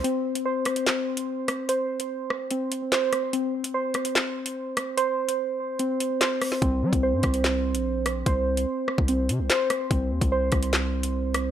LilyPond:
<<
  \new Staff \with { instrumentName = "Synth keys" } { \time 4/4 \key des \lydian \tempo 4 = 146 c'4 c''2. | c''2 c'4 c''4 | c'4 c''2. | c''2 c'4 c''4 |
c'4 c''2. | c''2 c'4 c''4 | c'4 c''2. | }
  \new Staff \with { instrumentName = "808-style bass" } { \clef bass \time 4/4 \key des \lydian r1 | r1 | r1 | r1 |
c,8 g16 c,8 g,16 c,4~ c,16 bes,,4~ bes,,16 | c,4 r8. c,8. c16 c,16 r4 | c,8 ees,16 c,8. c,2~ c,8 | }
  \new DrumStaff \with { instrumentName = "Drums" } \drummode { \time 4/4 hh8. hh16 r8 <hh ss>16 hh16 <hc sn>8. hh16 r8 <hh ss>8 | hh8. hh16 r8 ss8 hh8 hh8 <hc hh sn>8 <hh ss>8 | hh8. hh16 r8 <hh ss>16 hh16 <hc sn>8. hh16 r8 <hh ss>8 | hh8. hh16 r4 hh8 hh8 <hc hh sn>8 <hho ss>16 sn16 |
<hh bd>8. <hh bd>16 r8 <hh bd ss>16 hh16 <hc sn>8. hh16 r8 <hh ss>8 | <hh bd>8. hh16 r8 ss16 bd16 hh8 hh8 <hc hh sn>8 <hh ss>8 | <hh bd>8. <hh bd>16 r8 <hh bd ss>16 hh16 <hc sn>8. hh16 r8 <hh ss>8 | }
>>